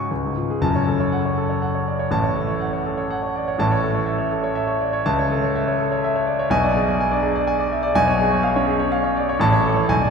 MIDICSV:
0, 0, Header, 1, 2, 480
1, 0, Start_track
1, 0, Key_signature, 3, "minor"
1, 0, Tempo, 522648
1, 570, Time_signature, 3, 2, 24, 8
1, 570, Tempo, 494641
1, 3450, Tempo, 485830
1, 9884, End_track
2, 0, Start_track
2, 0, Title_t, "Grand piano"
2, 0, Program_c, 0, 0
2, 0, Control_c, 0, 64, 127
2, 0, Note_on_c, 0, 37, 65
2, 0, Note_on_c, 0, 44, 45
2, 0, Note_on_c, 0, 66, 48
2, 0, Note_on_c, 0, 68, 46
2, 0, Note_on_c, 0, 73, 51
2, 0, Note_on_c, 0, 78, 45
2, 0, Note_on_c, 0, 80, 52
2, 0, Note_on_c, 0, 85, 68
2, 97, Note_off_c, 0, 85, 0
2, 103, Note_off_c, 0, 37, 0
2, 103, Note_on_c, 0, 37, 61
2, 110, Control_c, 0, 64, 0
2, 111, Note_off_c, 0, 68, 0
2, 115, Note_off_c, 0, 44, 0
2, 116, Note_off_c, 0, 66, 0
2, 118, Note_off_c, 0, 73, 0
2, 119, Note_off_c, 0, 78, 0
2, 119, Note_off_c, 0, 80, 0
2, 230, Note_on_c, 0, 44, 42
2, 291, Control_c, 0, 64, 127
2, 345, Note_on_c, 0, 65, 46
2, 415, Note_off_c, 0, 44, 0
2, 461, Note_on_c, 0, 68, 65
2, 530, Note_off_c, 0, 65, 0
2, 562, Note_off_c, 0, 37, 0
2, 562, Note_on_c, 0, 30, 73
2, 567, Note_on_c, 0, 81, 93
2, 568, Note_on_c, 0, 42, 75
2, 574, Note_off_c, 0, 68, 0
2, 590, Control_c, 0, 64, 0
2, 700, Note_on_c, 0, 73, 63
2, 746, Control_c, 0, 64, 127
2, 762, Note_off_c, 0, 81, 0
2, 814, Note_on_c, 0, 69, 60
2, 888, Note_off_c, 0, 73, 0
2, 939, Note_on_c, 0, 73, 58
2, 1005, Note_off_c, 0, 69, 0
2, 1058, Note_on_c, 0, 78, 66
2, 1127, Note_off_c, 0, 73, 0
2, 1186, Note_on_c, 0, 73, 59
2, 1247, Note_off_c, 0, 78, 0
2, 1304, Note_on_c, 0, 69, 62
2, 1371, Note_off_c, 0, 73, 0
2, 1421, Note_on_c, 0, 73, 65
2, 1490, Note_off_c, 0, 69, 0
2, 1539, Note_on_c, 0, 78, 69
2, 1608, Note_off_c, 0, 73, 0
2, 1664, Note_on_c, 0, 73, 55
2, 1727, Note_off_c, 0, 78, 0
2, 1793, Note_on_c, 0, 74, 54
2, 1850, Note_off_c, 0, 73, 0
2, 1901, Note_on_c, 0, 73, 64
2, 1903, Note_off_c, 0, 74, 0
2, 1970, Note_off_c, 0, 30, 0
2, 1973, Note_off_c, 0, 42, 0
2, 2012, Note_on_c, 0, 33, 75
2, 2018, Note_off_c, 0, 73, 0
2, 2020, Note_on_c, 0, 45, 75
2, 2020, Note_on_c, 0, 81, 96
2, 2033, Control_c, 0, 64, 0
2, 2139, Note_on_c, 0, 73, 61
2, 2211, Note_off_c, 0, 81, 0
2, 2219, Control_c, 0, 64, 127
2, 2259, Note_on_c, 0, 69, 64
2, 2330, Note_off_c, 0, 73, 0
2, 2377, Note_on_c, 0, 73, 62
2, 2450, Note_off_c, 0, 69, 0
2, 2491, Note_on_c, 0, 78, 62
2, 2568, Note_off_c, 0, 73, 0
2, 2616, Note_on_c, 0, 73, 62
2, 2684, Note_off_c, 0, 78, 0
2, 2744, Note_on_c, 0, 69, 59
2, 2806, Note_off_c, 0, 73, 0
2, 2853, Note_on_c, 0, 73, 62
2, 2930, Note_off_c, 0, 69, 0
2, 2980, Note_on_c, 0, 78, 70
2, 3045, Note_off_c, 0, 73, 0
2, 3100, Note_on_c, 0, 73, 58
2, 3169, Note_off_c, 0, 78, 0
2, 3225, Note_on_c, 0, 74, 56
2, 3289, Note_off_c, 0, 73, 0
2, 3339, Note_off_c, 0, 74, 0
2, 3343, Note_on_c, 0, 73, 67
2, 3412, Note_off_c, 0, 33, 0
2, 3416, Note_off_c, 0, 45, 0
2, 3446, Note_on_c, 0, 33, 76
2, 3457, Note_off_c, 0, 73, 0
2, 3457, Note_on_c, 0, 81, 102
2, 3460, Note_on_c, 0, 45, 82
2, 3468, Control_c, 0, 64, 0
2, 3576, Note_on_c, 0, 73, 66
2, 3615, Control_c, 0, 64, 127
2, 3647, Note_off_c, 0, 81, 0
2, 3694, Note_on_c, 0, 69, 62
2, 3766, Note_off_c, 0, 73, 0
2, 3804, Note_on_c, 0, 73, 64
2, 3885, Note_off_c, 0, 69, 0
2, 3918, Note_on_c, 0, 76, 66
2, 4000, Note_off_c, 0, 73, 0
2, 4036, Note_on_c, 0, 73, 64
2, 4117, Note_off_c, 0, 76, 0
2, 4165, Note_on_c, 0, 69, 66
2, 4236, Note_off_c, 0, 73, 0
2, 4287, Note_on_c, 0, 73, 67
2, 4361, Note_off_c, 0, 69, 0
2, 4403, Note_on_c, 0, 76, 76
2, 4484, Note_off_c, 0, 73, 0
2, 4522, Note_on_c, 0, 73, 65
2, 4603, Note_off_c, 0, 76, 0
2, 4651, Note_on_c, 0, 74, 60
2, 4724, Note_off_c, 0, 73, 0
2, 4775, Note_on_c, 0, 73, 75
2, 4776, Note_off_c, 0, 74, 0
2, 4859, Note_off_c, 0, 33, 0
2, 4866, Note_off_c, 0, 45, 0
2, 4899, Note_off_c, 0, 73, 0
2, 4901, Note_on_c, 0, 81, 103
2, 4903, Note_on_c, 0, 37, 87
2, 4921, Control_c, 0, 64, 0
2, 5030, Note_on_c, 0, 73, 66
2, 5094, Control_c, 0, 64, 127
2, 5095, Note_off_c, 0, 81, 0
2, 5155, Note_on_c, 0, 69, 69
2, 5219, Note_off_c, 0, 73, 0
2, 5273, Note_on_c, 0, 73, 66
2, 5342, Note_off_c, 0, 69, 0
2, 5391, Note_on_c, 0, 76, 69
2, 5461, Note_off_c, 0, 73, 0
2, 5515, Note_on_c, 0, 73, 69
2, 5581, Note_off_c, 0, 76, 0
2, 5634, Note_on_c, 0, 69, 70
2, 5703, Note_off_c, 0, 73, 0
2, 5749, Note_on_c, 0, 73, 70
2, 5822, Note_off_c, 0, 69, 0
2, 5874, Note_on_c, 0, 76, 75
2, 5939, Note_off_c, 0, 73, 0
2, 5987, Note_on_c, 0, 73, 69
2, 6061, Note_off_c, 0, 76, 0
2, 6096, Note_on_c, 0, 74, 65
2, 6177, Note_off_c, 0, 73, 0
2, 6220, Note_off_c, 0, 74, 0
2, 6220, Note_on_c, 0, 73, 76
2, 6305, Note_off_c, 0, 37, 0
2, 6325, Note_on_c, 0, 35, 89
2, 6335, Note_on_c, 0, 47, 91
2, 6335, Note_on_c, 0, 80, 110
2, 6342, Note_off_c, 0, 73, 0
2, 6362, Control_c, 0, 64, 0
2, 6456, Note_on_c, 0, 74, 77
2, 6510, Control_c, 0, 64, 127
2, 6530, Note_off_c, 0, 80, 0
2, 6578, Note_on_c, 0, 68, 73
2, 6650, Note_off_c, 0, 74, 0
2, 6702, Note_on_c, 0, 74, 72
2, 6770, Note_off_c, 0, 68, 0
2, 6826, Note_on_c, 0, 80, 77
2, 6891, Note_off_c, 0, 74, 0
2, 6930, Note_on_c, 0, 62, 62
2, 6934, Note_on_c, 0, 74, 71
2, 7011, Note_off_c, 0, 80, 0
2, 7042, Note_on_c, 0, 68, 72
2, 7121, Note_off_c, 0, 62, 0
2, 7123, Note_off_c, 0, 74, 0
2, 7171, Note_on_c, 0, 74, 78
2, 7236, Note_off_c, 0, 68, 0
2, 7289, Note_on_c, 0, 80, 85
2, 7359, Note_off_c, 0, 74, 0
2, 7410, Note_on_c, 0, 74, 74
2, 7476, Note_off_c, 0, 80, 0
2, 7531, Note_on_c, 0, 76, 66
2, 7595, Note_off_c, 0, 74, 0
2, 7639, Note_on_c, 0, 74, 84
2, 7645, Note_off_c, 0, 76, 0
2, 7710, Note_off_c, 0, 35, 0
2, 7715, Note_off_c, 0, 47, 0
2, 7757, Note_off_c, 0, 74, 0
2, 7758, Note_on_c, 0, 35, 92
2, 7764, Note_on_c, 0, 80, 122
2, 7767, Note_on_c, 0, 47, 98
2, 7775, Control_c, 0, 64, 0
2, 7881, Note_on_c, 0, 73, 78
2, 7950, Note_off_c, 0, 80, 0
2, 7954, Control_c, 0, 64, 127
2, 8009, Note_on_c, 0, 68, 76
2, 8069, Note_off_c, 0, 73, 0
2, 8117, Note_on_c, 0, 73, 70
2, 8194, Note_off_c, 0, 68, 0
2, 8236, Note_on_c, 0, 77, 81
2, 8308, Note_off_c, 0, 73, 0
2, 8362, Note_on_c, 0, 73, 74
2, 8363, Note_on_c, 0, 61, 73
2, 8428, Note_off_c, 0, 77, 0
2, 8471, Note_on_c, 0, 68, 80
2, 8551, Note_off_c, 0, 61, 0
2, 8551, Note_off_c, 0, 73, 0
2, 8594, Note_on_c, 0, 73, 78
2, 8666, Note_off_c, 0, 68, 0
2, 8715, Note_on_c, 0, 77, 83
2, 8787, Note_off_c, 0, 73, 0
2, 8834, Note_on_c, 0, 73, 72
2, 8909, Note_off_c, 0, 77, 0
2, 8961, Note_on_c, 0, 74, 69
2, 9029, Note_off_c, 0, 73, 0
2, 9080, Note_off_c, 0, 74, 0
2, 9084, Note_on_c, 0, 73, 81
2, 9159, Note_off_c, 0, 35, 0
2, 9164, Note_off_c, 0, 47, 0
2, 9187, Note_on_c, 0, 33, 90
2, 9200, Note_on_c, 0, 45, 90
2, 9200, Note_on_c, 0, 81, 116
2, 9202, Note_off_c, 0, 73, 0
2, 9218, Control_c, 0, 64, 0
2, 9315, Note_on_c, 0, 73, 77
2, 9368, Control_c, 0, 64, 127
2, 9394, Note_off_c, 0, 81, 0
2, 9444, Note_on_c, 0, 69, 74
2, 9512, Note_off_c, 0, 73, 0
2, 9554, Note_on_c, 0, 73, 67
2, 9639, Note_off_c, 0, 69, 0
2, 9666, Note_off_c, 0, 33, 0
2, 9672, Note_off_c, 0, 45, 0
2, 9674, Note_on_c, 0, 35, 92
2, 9677, Note_on_c, 0, 80, 105
2, 9682, Note_off_c, 0, 73, 0
2, 9704, Control_c, 0, 64, 0
2, 9798, Note_on_c, 0, 74, 67
2, 9855, Control_c, 0, 64, 127
2, 9879, Note_off_c, 0, 80, 0
2, 9884, Note_off_c, 0, 35, 0
2, 9884, Note_off_c, 0, 74, 0
2, 9884, End_track
0, 0, End_of_file